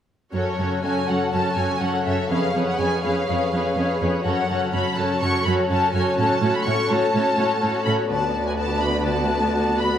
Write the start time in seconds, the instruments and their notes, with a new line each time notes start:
0.33 cello section F#2, harp F#2, viola section C#4 F#4, violin section A4 C#5
0.59 cello section F#2, harp C#3, viola section C#4 F#4, violin section A4 C#5
0.83 cello section F#2, viola section C#4 F#4, harp A4, violin section A4 C#5 G#5
1.08 cello section F#2, harp C#4, viola section C#4 F#4, violin section A4 C#5 F#5
1.32 harp F#2, cello section F#2, viola section C#4 F#4, violin section A4 C#5 A5
1.56 cello section F#2, harp C#3, viola section C#4 F#4, violin section A4 C#5 G#5
1.81 cello section F#2, viola section C#4 F#4, violin section A4 C#5 F#5, harp A4
2.06 cello section F#2, viola section C#4 F#4, harp C#4, violin section A4 C#5 E5
2.30 cello section F2, harp F2, viola section C#4 G#4, violin section B4 C#5 F5
2.54 cello section F2, harp F3, viola section C#4 G#4, violin section B4 C#5
2.67 violin section F#5
2.79 cello section F2, viola section C#4 G#4, harp G#4, violin section B4 C#5 G#5
3.03 cello section F2, viola section C#4 G#4, harp C#4, violin section B4 C#5 F5
3.28 harp F2, cello section F2, viola section C#4 G#4, violin section B4 C#5
3.53 cello section F2, harp F3, viola section C#4 G#4, violin section B4 C#5
3.77 cello section F2, viola section C#4 G#4, harp G#4, violin section B4 C#5
4.00 cello section F2, harp C#4, viola section C#4 G#4, violin section B4 C#5
4.24 harp F#2, cello section F#2, viola section C#4 F#4, violin section A4 C#5 F#5
4.49 cello section F#2, harp C#3, viola section C#4 F#4, violin section A4 C#5
4.73 cello section F#2, viola section C#4 F#4, harp F#4, violin section A4 C#5 B5
4.96 cello section F#2, harp C#4, viola section C#4 F#4, violin section A4 C#5 A5
5.21 cello section F#2, harp F#2, viola section C#4 F#4, violin section A4 C#5 C#6
5.45 cello section F#2, harp C#3, viola section C#4 F#4, violin section A4 C#5 B5
5.70 cello section F#2, viola section C#4 F#4, harp F#4, violin section A4 C#5 A5
5.93 cello section F#2, harp C#4, viola section C#4 F#4, violin section A4 C#5 G#5
6.17 harp A2, cello section A2, viola section C#4 F#4, violin section A4 C#5 A5
6.41 cello section A2, harp A3, viola section C#4 F#4, violin section A4 C#5
6.54 violin section B5
6.65 cello section A2, viola section C#4 F#4, harp F#4, violin section A4 C#5 C#6
6.90 cello section A2, harp C#4, viola section C#4 F#4, violin section A4 C#5 A5
7.14 harp A2, cello section A2, viola section C#4 F#4, violin section A4 C#5
7.37 cello section A2, harp A3, viola section C#4 F#4, violin section A4 C#5
7.61 cello section A2, viola section C#4 F#4, harp F#4, violin section A4 C#5
7.84 cello section A2, harp C#4, viola section C#4 F#4, violin section A4 C#5 B5
8.09 cello section D2, harp D3, viola section B3 F#4, violin section B4 D5 A5
8.34 harp A3
8.47 violin section G#5
8.57 harp F#4, violin section A5
8.80 harp B3, violin section B5
9.03 harp D3, violin section A5
9.30 harp A3
9.55 harp F#4
9.78 harp B3, violin section B5